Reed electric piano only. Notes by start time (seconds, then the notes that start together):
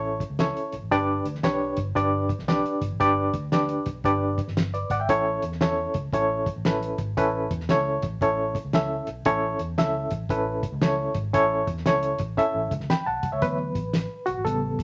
Already playing: C#4 E4 A4 C#5
0.39 C#4 E4 A4 C#5
0.91 D4 G4 B4 D5
1.43 D4 G4 B4 C#5
1.95 D4 G4 B4 D5
2.48 D4 G4 B4 D5
3.00 D4 G4 B4 D5
3.52 D4 G4 B4 D5
4.05 D4 G4 B4 D5
4.74 B4 D5
4.91 D5 F#5
5.00 E5 G5
5.09 C#4 E4 A4 C#5
5.61 C#4 E4 A4 C#5
6.13 C#4 E4 A4 C#5
6.65 C#4 E4 A4 B4
7.17 C#4 E4 A4 B4
7.70 C#4 E4 A4 C#5
8.22 C#4 E4 A4 C#5
8.74 C#4 E4 A4 E5
9.26 C#4 E4 A4 C#5
9.78 C#4 E4 A4 E5
10.30 C#4 E4 A4 B4
10.82 C#4 E4 A4 C#5
11.34 C#4 E4 A4 C#5
11.86 C#4 E4 A4 C#5
12.37 C#4 E4 A4 E5
12.90 G5 B5
13.06 F#5 A5
13.32 C#5 E5
13.41 E3 F#3 B3 B4
14.26 F#4
14.45 C#3 G3 B3 A4